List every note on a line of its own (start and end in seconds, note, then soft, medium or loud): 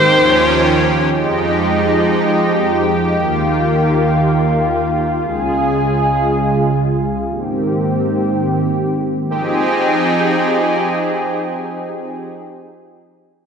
0.00 1.10 D#3 medium
0.00 1.10 G4 medium
0.00 1.01 C5 loud
0.09 1.11 D#2 medium
0.09 1.10 F3 medium
0.09 1.10 C#4 medium
1.12 3.15 F2 medium
1.12 3.15 F3 medium
1.12 3.15 G#3 medium
1.12 3.15 D#4 medium
1.12 5.18 G4 medium
3.17 5.20 D#2 medium
3.17 5.20 D#3 medium
3.17 5.20 A#3 medium
3.17 7.23 F4 medium
5.22 7.25 C#2 medium
5.22 7.25 C#3 medium
5.22 7.25 G#3 medium
5.22 7.25 G#4 medium
7.27 9.30 G#2 medium
7.27 9.30 D#3 medium
7.27 9.30 A#3 medium
7.27 9.30 C4 medium
7.27 9.30 G4 medium
9.32 12.29 F3 medium
9.32 12.29 C4 medium
9.32 12.29 D#4 medium
9.32 12.29 G4 medium
9.32 12.29 G#4 medium